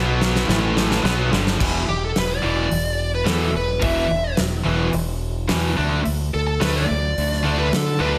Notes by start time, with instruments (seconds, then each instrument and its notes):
Already playing: fingered electric bass B1, distorted electric guitar B2 F#3 B3
0.21 snare
0.36 snare
0.48 fingered electric bass A1, distorted electric guitar A2 E3 A3, snare
0.77 snare
0.91 snare
1.04 fingered electric bass B1, distorted electric guitar B2 F#3 B3, snare
1.31 fingered electric bass G1, distorted electric guitar G2 D3 G3, snare
1.47 snare
1.58 fingered electric bass E1, distorted electric guitar E2 B2 E3, kick, crash
1.89 fingered electric bass E1, lead electric guitar G4
2.04 lead electric guitar A4
2.16 fingered electric bass E1, lead electric guitar B4, snare, open hi-hat
2.30 lead electric guitar D5
2.43 fingered electric bass E1, distorted electric guitar E2 B2 E3
2.71 fingered electric bass E1, open hi-hat
3.15 lead electric guitar B4
3.26 distorted electric guitar E2 B2 E3, fingered electric bass E2, lead electric guitar A4, snare, open hi-hat
3.54 fingered electric bass E1, lead electric guitar B4
3.82 fingered electric bass E1, distorted electric guitar E2 B2 E3, lead electric guitar E5, kick, open hi-hat
4.10 fingered electric bass E1
4.37 fingered electric bass E1, snare, open hi-hat
4.65 fingered electric bass E1, distorted electric guitar E2 B2 E3
4.93 fingered electric bass E1, open hi-hat
5.49 distorted electric guitar E2 B2 E3, fingered electric bass E2, snare, open hi-hat
5.76 fingered electric bass D2, distorted electric guitar D3 A3 D4
6.05 fingered electric bass D2, open hi-hat
6.34 fingered electric bass D2, lead electric guitar A4
6.47 lead electric guitar A4
6.61 fingered electric bass D2, distorted electric guitar D3 A3 D4, lead electric guitar B4, snare, open hi-hat
6.76 lead electric guitar D5, snare
6.90 fingered electric bass D2
7.18 fingered electric bass D2, open hi-hat
7.32 snare
7.44 distorted electric guitar D3 A3 D4
7.59 lead electric guitar B4
7.73 fingered electric bass D3, lead electric guitar A4, snare, open hi-hat
8.00 fingered electric bass D2, distorted electric guitar D3 A3 D4, lead electric guitar B4